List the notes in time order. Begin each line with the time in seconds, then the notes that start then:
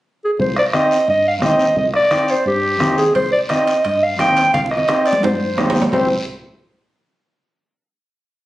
0.25 G#4
0.39 C2 C5, bombo low, high conga, long guiro
0.56 D5, bombo rim
0.73 C4 D#4 G4 D#5, bombo rim, high conga, short guiro
0.91 short guiro
1.08 G2 D#5, high conga, long guiro
1.28 F5
1.41 D#2 C4 D#4 G4 D#5, bombo low, bombo rim, high conga, short guiro
1.59 short guiro
1.76 C2 D#5, bombo low, high conga, long guiro
1.94 D5, bombo rim
2.11 C4 D#4 G4, bombo rim, high conga, short guiro
2.28 C5, short guiro
2.45 G2 G4, high conga, long guiro
2.80 D#2 C4 D#4 G4, bombo low, bombo rim, high conga, short guiro
2.98 G#4, short guiro
3.15 C2 C5, bombo low, high conga, high timbale, long guiro
3.32 D5
3.49 C4 D#4 G4 D#5, bombo rim, high conga, high timbale, short guiro
3.67 high timbale, short guiro
3.84 G2 D#5, high conga, high timbale, long guiro
4.03 F5
4.18 D#2 C4 D#4 G4 G5, bombo low, bombo rim, high conga, high timbale, short guiro
4.36 high timbale, short guiro
4.54 C2 F5, bombo low, high conga, high timbale, long guiro
4.66 high conga
4.71 D#5, bombo rim
4.77 high conga
4.88 C4 D#4 G4, bombo rim, high conga, high timbale, short guiro
5.06 D5, high timbale, short guiro
5.13 low conga
5.23 G2 C5, low conga, high timbale, long guiro
5.35 low conga
5.58 D#2 C4 D#4 G4, bombo low, bombo rim, low conga, low timbale, short guiro
5.70 low conga, low timbale
5.75 short guiro
5.82 low conga, low timbale
5.92 C2 C4 E4 G4 C5, bombo low, low conga, low timbale, long guiro